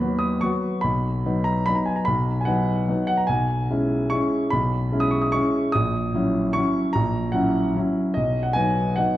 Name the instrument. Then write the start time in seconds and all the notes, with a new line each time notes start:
grand piano
Already playing: D#2 B5
0.01 F#3 B3 F#4
0.19 D#6
0.41 F#3 B3 F#4 C#6
0.81 B1 B5
1.26 F#3 B3 D#4
1.44 A#5
1.66 F#3 B3 D#4 B5
1.75 A#5
1.86 G#5
1.96 A#5
2.05 B1 B5
2.41 G#5
2.45 F#3 B3 D#4 F#5
2.88 F#3 B3 D#4
3.07 F#5
3.17 A#5
3.27 B1 G#5
3.70 G#3 C#4 E4
4.10 G#3 C#4 E4 C#6
4.50 B1 B5
4.92 G#3 C#4 E4
5.00 D#6
5.11 C#6
5.22 D#6
5.32 G#3 C#4 E4 C#6
5.72 A#1 D#6
6.14 F#3 C#4 E4
6.53 F#3 C#4 E4 C#6
6.93 A#1 A#5
7.32 F#3 C#4 E4 F#5
7.75 F#3 C#4 E4
8.14 B1 D#5
8.43 F#5
8.53 F#3 B3 D#4 G#5
8.96 F#3 B3 D#4 F#5